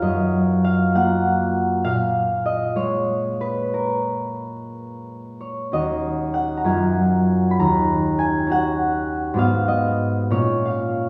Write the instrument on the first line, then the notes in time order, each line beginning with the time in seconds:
harp
Already playing: A#3 F4 A#4 C#5 F5
0.02 F#2 D#5
0.64 F5
0.95 A#3 F4 F#5
1.84 A#2 F5
2.46 D#5
2.76 G#3 C#5
3.41 B4
3.74 A#4
5.41 C#5
5.72 D#2 C#4 F#4 D#5
6.34 F#5
6.57 A#5
6.64 F#2 C#4 F4 G#5
7.51 B5
7.59 D#2 A#5
8.19 G#5
8.47 C#4 F#4
8.52 F#5
9.34 G#2 B3 F#4
9.39 F5
9.68 D#5
10.30 A#2 C#4 F4 C#5
10.65 F5